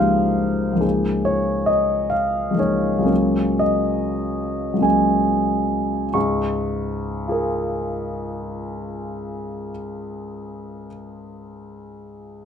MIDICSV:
0, 0, Header, 1, 2, 480
1, 0, Start_track
1, 0, Key_signature, -5, "major"
1, 0, Tempo, 852273
1, 470, Time_signature, 5, 2, 24, 8
1, 952, Tempo, 911854
1, 1432, Tempo, 1015228
1, 1912, Tempo, 1260504
1, 2872, Tempo, 1121495
1, 5573, End_track
2, 0, Start_track
2, 0, Title_t, "Grand piano"
2, 0, Program_c, 0, 0
2, 0, Control_c, 0, 64, 127
2, 0, Note_on_c, 0, 37, 37
2, 0, Note_on_c, 0, 53, 31
2, 0, Note_on_c, 0, 58, 30
2, 0, Note_on_c, 0, 63, 33
2, 0, Note_on_c, 0, 67, 30
2, 0, Note_on_c, 0, 70, 47
2, 0, Note_on_c, 0, 72, 57
2, 0, Note_on_c, 0, 77, 60
2, 0, Note_on_c, 0, 82, 26
2, 0, Note_on_c, 0, 87, 26
2, 0, Note_on_c, 0, 91, 26
2, 403, Note_off_c, 0, 37, 0
2, 411, Note_on_c, 0, 37, 39
2, 412, Note_off_c, 0, 53, 0
2, 421, Note_on_c, 0, 53, 33
2, 424, Note_off_c, 0, 58, 0
2, 433, Note_on_c, 0, 58, 32
2, 437, Note_off_c, 0, 63, 0
2, 445, Note_off_c, 0, 67, 0
2, 447, Note_on_c, 0, 63, 34
2, 454, Note_off_c, 0, 82, 0
2, 454, Note_on_c, 0, 68, 34
2, 462, Note_off_c, 0, 87, 0
2, 463, Note_off_c, 0, 77, 0
2, 472, Note_off_c, 0, 91, 0
2, 480, Control_c, 0, 64, 0
2, 482, Note_off_c, 0, 70, 0
2, 485, Note_off_c, 0, 72, 0
2, 580, Control_c, 0, 64, 127
2, 704, Note_on_c, 0, 73, 62
2, 936, Note_on_c, 0, 75, 64
2, 949, Note_off_c, 0, 73, 0
2, 1166, Note_on_c, 0, 77, 64
2, 1178, Note_off_c, 0, 75, 0
2, 1373, Note_off_c, 0, 37, 0
2, 1381, Note_on_c, 0, 37, 33
2, 1385, Note_off_c, 0, 53, 0
2, 1393, Note_on_c, 0, 53, 27
2, 1394, Note_off_c, 0, 58, 0
2, 1400, Note_off_c, 0, 63, 0
2, 1404, Note_off_c, 0, 68, 0
2, 1404, Note_on_c, 0, 58, 29
2, 1413, Note_on_c, 0, 63, 27
2, 1422, Note_off_c, 0, 77, 0
2, 1425, Note_on_c, 0, 68, 25
2, 1428, Note_on_c, 0, 73, 60
2, 1607, Note_off_c, 0, 37, 0
2, 1614, Note_on_c, 0, 37, 41
2, 1623, Note_on_c, 0, 54, 33
2, 1626, Note_off_c, 0, 58, 0
2, 1633, Note_on_c, 0, 58, 36
2, 1640, Note_off_c, 0, 53, 0
2, 1641, Note_off_c, 0, 68, 0
2, 1641, Note_on_c, 0, 61, 32
2, 1648, Note_on_c, 0, 68, 35
2, 1649, Note_off_c, 0, 63, 0
2, 1675, Control_c, 0, 64, 0
2, 1781, Control_c, 0, 64, 127
2, 1901, Note_on_c, 0, 75, 63
2, 1911, Note_off_c, 0, 73, 0
2, 2332, Note_off_c, 0, 37, 0
2, 2338, Note_on_c, 0, 37, 38
2, 2344, Note_off_c, 0, 54, 0
2, 2349, Note_on_c, 0, 54, 27
2, 2350, Note_off_c, 0, 58, 0
2, 2355, Note_off_c, 0, 61, 0
2, 2356, Note_on_c, 0, 58, 30
2, 2360, Note_on_c, 0, 61, 30
2, 2363, Note_off_c, 0, 68, 0
2, 2371, Note_on_c, 0, 68, 30
2, 2372, Note_on_c, 0, 80, 53
2, 2381, Note_off_c, 0, 75, 0
2, 2834, Note_off_c, 0, 37, 0
2, 2840, Note_off_c, 0, 54, 0
2, 2843, Note_off_c, 0, 58, 0
2, 2846, Note_off_c, 0, 61, 0
2, 2851, Note_off_c, 0, 68, 0
2, 2866, Note_off_c, 0, 80, 0
2, 2871, Note_on_c, 0, 85, 45
2, 2874, Note_on_c, 0, 44, 33
2, 2876, Note_on_c, 0, 37, 35
2, 2884, Control_c, 0, 64, 0
2, 2983, Control_c, 0, 64, 127
2, 3359, Note_on_c, 0, 65, 25
2, 3366, Note_on_c, 0, 68, 28
2, 3376, Note_on_c, 0, 70, 25
2, 4396, Note_off_c, 0, 85, 0
2, 4399, Note_off_c, 0, 44, 0
2, 4401, Note_off_c, 0, 37, 0
2, 4884, Note_off_c, 0, 65, 0
2, 4890, Note_off_c, 0, 68, 0
2, 4901, Note_off_c, 0, 70, 0
2, 5573, End_track
0, 0, End_of_file